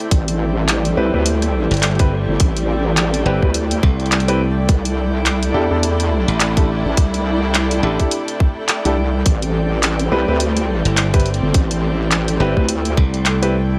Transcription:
Already playing: A3 C4 E4 A4 D5 G5
0.11 A1 G3, kick, closed hi-hat
0.28 closed hi-hat
0.68 clap, closed hi-hat
0.85 closed hi-hat
0.97 C2 C4 E4 G4 B4
1.14 D2 C4 E4 G4 B4
1.26 closed hi-hat
1.42 cross-stick, closed hi-hat
1.71 G1, closed hi-hat
1.74 closed hi-hat
1.77 closed hi-hat
1.80 clap, closed hi-hat
1.83 closed hi-hat
1.87 closed hi-hat
1.95 closed hi-hat
1.99 C4 E4 G4 B4, kick, cross-stick, closed hi-hat
2.28 G1
2.40 A1, kick, closed hi-hat
2.57 closed hi-hat
2.97 clap, closed hi-hat
3.14 closed hi-hat
3.26 G1 C4 E4 G4 B4, cross-stick
3.42 D2 C4 E4 G4 B4, kick, cross-stick
3.54 closed hi-hat
3.71 closed hi-hat
3.83 C2, kick
4.00 closed hi-hat
4.06 closed hi-hat
4.12 clap, closed hi-hat
4.20 closed hi-hat
4.28 C4 E4 G4 B4, cross-stick, closed hi-hat
4.69 C2 C3 D4 E4, kick, closed hi-hat
4.85 closed hi-hat
5.26 clap, closed hi-hat
5.43 closed hi-hat
5.54 E2 D4 E4 G4 A4
5.71 E2 D4 E4 G4 A4
5.83 closed hi-hat
6.00 cross-stick, closed hi-hat
6.28 A1, closed hi-hat
6.40 clap, closed hi-hat
6.57 D4 E4 G4 A4, kick, cross-stick, closed hi-hat
6.85 A1
6.97 C2, kick, closed hi-hat
7.14 closed hi-hat
7.55 clap, closed hi-hat
7.71 closed hi-hat
7.83 A1 D4 E4 G4 A4
8.00 D4 E4 G4 A4, kick, cross-stick, closed hi-hat
8.11 closed hi-hat
8.28 closed hi-hat
8.40 kick
8.69 clap, closed hi-hat
8.85 C2 D4 E4 G4 A4, cross-stick, closed hi-hat
9.25 A1 G3 A3 C4 E4, kick, closed hi-hat
9.42 closed hi-hat
9.83 clap, closed hi-hat
9.99 closed hi-hat
10.12 C2 C4 E4 G4 B4
10.28 D2 C4 E4 G4 B4
10.40 closed hi-hat
10.57 cross-stick, closed hi-hat
10.85 G1, closed hi-hat
10.97 clap, closed hi-hat
11.14 C4 E4 G4 B4, kick, cross-stick, closed hi-hat
11.20 closed hi-hat
11.26 closed hi-hat
11.34 closed hi-hat
11.42 G1
11.54 A1, kick, closed hi-hat
11.71 closed hi-hat
12.11 clap, closed hi-hat
12.28 closed hi-hat
12.40 G1 C4 E4 G4 B4
12.57 D2 C4 E4 G4 B4, kick, cross-stick
12.69 closed hi-hat
12.85 closed hi-hat
12.97 C2, kick
13.14 closed hi-hat
13.26 clap, closed hi-hat
13.42 C4 E4 G4 B4, cross-stick, closed hi-hat

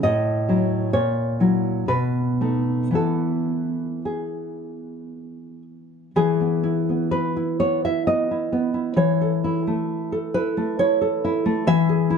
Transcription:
0.03 A2 D#5
0.48 F#3 E4
0.93 A#2 C#5
1.40 F#3 E4
1.88 B2 B4
2.41 A3 D#4
2.91 E3 B3 E4
2.95 A4
4.05 G#4
6.16 E3 G#4
6.40 B3
6.64 E4
6.89 B3
7.11 B4
7.36 E4
7.60 B3 C#5
7.85 E4 E5
8.07 B3 D#5
8.31 E4
8.52 B3
8.74 E4
8.96 E3 C#5
9.21 A4
9.44 E4
9.67 A3
10.12 A4
10.34 E4 B4
10.57 A3
10.79 E4 C#5
11.01 A4
11.24 E4
11.46 A3
11.67 E3 E5
11.89 G#4
12.10 E4

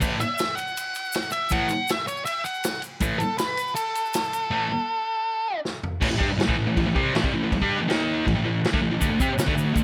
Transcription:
0.01 A2 E3 A3, kick, crash, shaker
0.20 E5, ride, shaker
0.38 snare, ride, shaker
0.55 F#5, ride, shaker
0.67 shaker
0.77 ride, shaker
0.95 ride, shaker
1.05 shaker
1.12 snare, ride, shaker
1.22 shaker
1.31 E5, ride, shaker
1.49 A2 E3 A3 F#5, kick, ride, shaker
1.69 ride, shaker
1.88 E5, snare, ride, shaker
2.07 C#5, ride, shaker
2.17 shaker
2.26 E5, ride, shaker
2.44 F#5, ride, shaker
2.54 shaker
2.64 snare, ride, shaker
2.75 shaker
2.82 ride, shaker
3.00 A2 E3 A3, kick, ride, shaker
3.19 A4, ride, shaker
3.38 B4, snare, ride, shaker
3.57 ride, shaker
3.67 shaker
3.75 A4, ride, shaker
3.95 ride, shaker
4.05 shaker
4.13 snare, ride, shaker
4.24 shaker
4.33 ride, shaker
4.51 A2 E3 A3
5.65 snare
5.84 floor tom
6.01 A2 E3, kick, crash
6.10 A2 E3
6.17 G3 D4, kick
6.28 muted distorted electric guitar stroke
6.38 muted distorted electric guitar stroke, snare, crash
6.47 A2 E3, kick
6.57 A2 E3
6.67 A2 E3
6.77 A2 E3, kick, crash
6.86 A2 E3
6.95 C3 G3 C4, kick
7.15 A2 E3, snare, crash
7.24 C3 G3, kick
7.34 A2 E3
7.44 A2 E3
7.52 muted distorted electric guitar stroke, kick, crash
7.61 G3 D4 G4, kick
7.80 A2 E3
7.88 D#3 A#3 D#4, snare, crash
8.26 A2 E3, kick, crash
8.35 A2 E3
8.45 A2 E3
8.64 snare, crash
8.72 D3 A3, kick
8.82 A2 E3
8.91 A2 E3
9.00 D3 A3, kick, crash, shaker
9.10 D3 A3
9.20 C4 G4, kick, shaker
9.29 muted distorted electric guitar stroke
9.38 muted distorted electric guitar stroke, snare, crash, shaker
9.47 D3 A3, kick
9.56 D3 A3, shaker
9.65 D3 A3
9.74 D3 A3, kick, crash, shaker

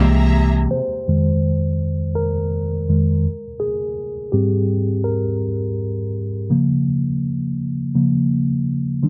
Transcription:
Already playing: C2 G3
0.00 C3 E3 G#3 A#3 G#4 E5 A#5
0.71 C5
1.07 F2 D#3 G#3
2.15 A#4
2.89 F2 D#3 G#3
3.60 G#4
4.32 G#2 G3 C4 G4
5.04 A#4
6.50 C#3 F3 A#3
7.94 C#3 F3 A#3
9.03 D#3 G3 D4

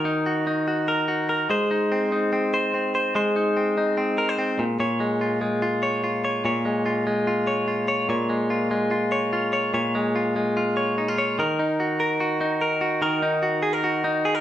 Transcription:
Already playing: D#3 F#4 A#4
0.05 D#4
0.26 F#4
0.47 D#4
0.68 F#4
0.88 A#4
1.08 F#4
1.29 A#4
1.50 G#3 C5
1.71 D#4
1.92 C4
2.12 D#4
2.33 C4
2.54 C5
2.74 C4
2.95 C5
3.15 G#3 C5
3.36 D#4
3.57 C4
3.78 D#4
3.97 C4
4.18 A#4
4.29 C5
4.38 C4
4.59 A#2
4.80 A#2 C#5
5.00 G#3
5.21 F4
5.41 G#3
5.62 F4
5.83 C#5
6.04 F4
6.25 C#5
6.45 A#2 C#5
6.65 G#3
6.86 F4
7.07 G#3
7.27 F4
7.47 C#5
7.68 F4
7.88 C#5
8.09 A#2 C#5
8.30 G#3
8.50 F4
8.71 G#3
8.91 F4
9.12 C#5
9.33 F4
9.53 C#5
9.74 A#2 C#5
9.95 G#3
10.16 F4
10.36 G#3
10.57 F4
10.77 C#5
10.98 D#4
11.08 F4
11.18 C#5
11.39 D#3 A#4
11.59 D#4
11.80 F#4
12.00 A#4
12.20 F#4
12.41 D#4
12.61 A#4
12.81 F#4
13.02 D#3 A#4
13.22 D#4
13.43 F#4
13.63 G#4
13.73 A#4
13.84 F#4
14.04 D#4
14.25 G#4
14.35 A#4

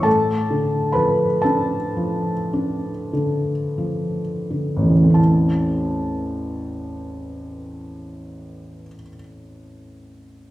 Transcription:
0.02 A2 A4 A5
0.50 D3
0.92 F3 B4 B5
1.42 D4 A4 A5
1.97 F3
2.53 D4
3.13 D3
3.78 F3
4.51 D3
4.77 A1
4.82 E2
4.90 E3
4.96 A3
5.03 C4
5.10 E4
5.14 A5

